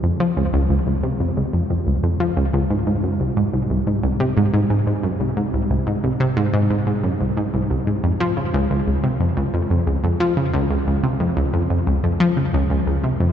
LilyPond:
\new Staff \with { instrumentName = "Synth arpeggio sound" } { \clef bass \time 4/4 \key des \major \tempo 4 = 90 f,16 f16 des,16 des,16 des,16 des,16 c16 f,16 des,16 f,16 f,16 des,16 f,16 f16 des,16 des,16 | aes,16 aes,16 ges,16 c,16 aes,16 c,16 c,16 aes,16 c,16 c16 aes,16 aes,16 aes,16 aes,16 ges,16 c,16 | aes,16 c,16 c,16 aes,16 c,16 c16 aes,16 aes,16 aes,16 aes,16 ges,16 c,16 aes,16 c,16 c,16 aes,16 | f,16 f16 des16 des,16 des,16 des,16 c16 f,16 des,16 f,16 f,16 des,16 f,16 f16 des16 des,16 |
des,16 des,16 c16 f,16 des,16 f,16 f,16 des,16 f,16 f16 des16 des,16 des,16 des,16 c16 f,16 | }